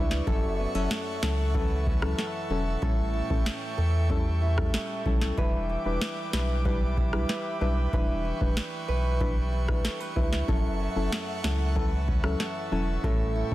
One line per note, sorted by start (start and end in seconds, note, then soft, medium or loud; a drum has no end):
0.00 0.22 C#2 loud
0.00 0.30 E3 medium
0.00 0.24 G3 medium
0.00 0.33 G3 medium
0.00 0.24 D4 medium
0.00 0.34 D4 medium
0.00 0.24 E4 medium
0.00 0.58 E4 medium
0.00 0.23 G4 medium
0.00 0.25 B4 medium
0.00 0.27 B4 medium
0.00 0.23 D5 medium
0.00 10.44 E5 medium
0.00 2.78 C#6 medium
0.11 snare medium
0.27 0.67 F#1 loud
0.27 2.81 F#2 medium
0.27 0.71 F#3 medium
0.27 0.71 C#4 medium
0.27 0.71 E4 medium
0.27 5.34 A4 medium
0.27 0.71 A4 loud
0.27 1.22 A4 medium
0.27 2.80 F#5 medium
0.27 kick loud
0.59 0.75 B3 medium
0.75 0.88 F#1 loud
0.75 1.19 F#3 medium
0.75 1.19 C#4 medium
0.75 1.85 C#4 soft
0.75 1.19 E4 medium
0.75 1.19 A4 medium
0.91 3.45 A3 medium
0.91 snare loud
1.23 2.14 C#2 medium
1.23 1.52 F#3 medium
1.23 1.52 C#4 medium
1.23 1.52 E4 medium
1.23 2.18 A4 medium
1.23 1.52 A4 medium
1.23 snare loud
1.54 4.09 E3 medium
1.54 1.67 F#3 loud
1.54 1.68 C#4 medium
1.54 1.68 E4 medium
1.54 1.68 A4 loud
1.54 kick medium
1.86 2.50 C#4 medium
1.86 kick loud
2.02 2.15 F#3 medium
2.02 2.15 C#4 medium
2.02 2.15 E4 medium
2.02 2.16 A4 medium
2.02 cross-stick medium
2.18 2.82 A4 medium
2.18 snare medium
2.50 2.77 E1 medium
2.50 2.63 F#3 medium
2.50 3.13 C#4 medium
2.50 2.63 C#4 medium
2.50 2.64 E4 medium
2.50 2.64 A4 medium
2.82 3.22 A1 loud
2.82 5.37 A2 medium
2.82 3.26 G3 medium
2.82 3.27 C#4 medium
2.82 3.27 E4 medium
2.82 3.76 A4 medium
2.82 3.27 A4 loud
2.82 5.35 G5 medium
2.82 5.35 C#6 medium
2.82 kick loud
3.14 4.41 E4 medium
3.30 3.44 A1 medium
3.30 3.43 G3 medium
3.30 3.43 C#4 medium
3.30 3.43 E4 medium
3.30 3.43 A4 medium
3.30 kick medium
3.46 5.44 C#4 medium
3.46 snare loud
3.78 4.70 E2 medium
3.78 4.72 A4 medium
4.10 6.65 G3 medium
4.10 4.23 G3 loud
4.10 4.23 C#4 medium
4.10 4.23 E4 medium
4.10 4.23 A4 loud
4.10 kick medium
4.42 5.05 E4 medium
4.58 5.02 G3 medium
4.58 5.02 C#4 medium
4.58 5.02 E4 medium
4.58 5.02 A4 medium
4.58 kick loud
4.58 cross-stick medium
4.74 5.38 A4 medium
4.74 snare loud
5.06 5.32 B1 loud
5.06 5.35 G3 medium
5.06 5.35 C#4 medium
5.06 5.69 E4 medium
5.06 5.35 E4 medium
5.06 5.35 A4 medium
5.06 kick medium
5.22 snare medium
5.37 5.77 E1 loud
5.37 7.93 E3 medium
5.37 5.82 G3 medium
5.37 5.82 D4 medium
5.37 5.82 E4 medium
5.37 10.44 B4 medium
5.37 6.32 B4 medium
5.37 5.82 B4 loud
5.37 10.44 G5 medium
5.37 7.91 D6 medium
5.37 kick loud
5.69 6.97 E4 medium
5.85 5.99 E1 medium
5.85 6.30 G3 medium
5.85 6.30 D4 medium
5.85 6.30 E4 medium
5.85 6.30 B4 medium
6.01 8.56 D4 medium
6.01 snare loud
6.33 7.25 B1 medium
6.33 6.63 G3 medium
6.33 6.63 D4 medium
6.33 6.63 E4 medium
6.33 6.63 B4 medium
6.33 7.28 B4 medium
6.33 snare loud
6.65 6.78 G3 loud
6.65 9.19 G3 medium
6.65 6.78 D4 medium
6.65 6.78 E4 medium
6.65 6.78 B4 loud
6.65 kick loud
6.97 7.61 E4 medium
6.97 kick loud
7.13 7.26 G3 medium
7.13 7.26 D4 medium
7.13 7.26 E4 medium
7.13 7.26 B4 medium
7.13 cross-stick medium
7.29 7.92 B4 medium
7.29 snare medium
7.61 7.88 B1 medium
7.61 7.74 G3 medium
7.61 7.74 D4 medium
7.61 8.24 E4 medium
7.61 7.74 E4 medium
7.61 7.74 B4 medium
7.93 8.33 E1 loud
7.93 10.51 E3 medium
7.93 8.37 G3 medium
7.93 8.37 D4 medium
7.93 8.37 E4 medium
7.93 8.37 B4 loud
7.93 8.87 B4 medium
7.93 13.00 C#6 loud
7.93 kick loud
8.25 9.52 E4 medium
8.41 8.54 E1 medium
8.41 8.54 G3 medium
8.41 8.54 D4 medium
8.41 8.54 E4 medium
8.41 8.54 B4 medium
8.41 kick medium
8.57 10.55 D4 medium
8.57 snare loud
8.88 9.81 B1 medium
8.88 9.84 B4 medium
9.21 9.34 G3 loud
9.21 10.55 G3 medium
9.21 9.34 D4 medium
9.21 9.34 E4 medium
9.21 9.34 B4 loud
9.21 kick loud
9.53 10.16 E4 medium
9.68 10.12 G3 medium
9.68 10.13 D4 medium
9.68 10.13 E4 medium
9.68 10.13 B4 medium
9.68 kick loud
9.68 cross-stick medium
9.84 10.00 A4 medium
9.84 snare loud
10.00 10.48 B4 medium
10.16 10.43 C#2 medium
10.16 10.46 G3 medium
10.16 10.46 D4 medium
10.16 10.46 E4 medium
10.16 10.80 E4 medium
10.16 10.46 B4 medium
10.16 kick medium
10.33 snare medium
10.48 10.88 F#1 loud
10.48 13.04 F#2 medium
10.48 10.92 F#3 medium
10.48 10.92 C#4 medium
10.48 10.92 E4 medium
10.48 10.92 A4 loud
10.48 13.55 A4 medium
10.48 11.43 A4 medium
10.48 13.55 E5 medium
10.48 13.01 F#5 medium
10.48 kick loud
10.80 12.07 C#4 medium
10.96 11.09 F#1 loud
10.96 11.40 F#3 medium
10.96 11.40 C#4 medium
10.96 11.40 E4 medium
10.96 11.40 A4 medium
11.12 13.55 A3 medium
11.12 snare loud
11.44 12.36 C#2 medium
11.44 11.73 F#3 medium
11.44 11.73 C#4 medium
11.44 11.73 E4 medium
11.44 12.39 A4 medium
11.44 11.74 A4 medium
11.44 snare loud
11.75 13.55 E3 medium
11.75 11.89 F#3 medium
11.75 11.89 C#4 medium
11.75 11.89 E4 medium
11.75 11.89 A4 loud
11.75 kick medium
12.08 12.72 C#4 medium
12.08 kick loud
12.24 12.37 F#3 medium
12.24 12.37 C#4 medium
12.24 12.37 E4 medium
12.24 12.37 A4 medium
12.24 cross-stick loud
12.40 13.04 A4 medium
12.40 snare medium
12.72 12.98 E1 medium
12.72 12.85 F#3 medium
12.72 12.85 C#4 medium
12.72 13.35 C#4 medium
12.72 12.85 E4 medium
12.72 12.85 A4 medium
13.03 13.44 A1 loud
13.03 13.55 A2 medium
13.03 13.48 G3 medium
13.03 13.48 C#4 medium
13.03 13.48 E4 medium
13.03 13.48 A4 loud
13.03 13.55 A4 medium
13.03 13.55 G5 medium
13.03 13.55 C#6 medium
13.03 kick loud
13.36 13.55 E4 medium
13.51 13.55 G3 medium
13.51 13.55 C#4 medium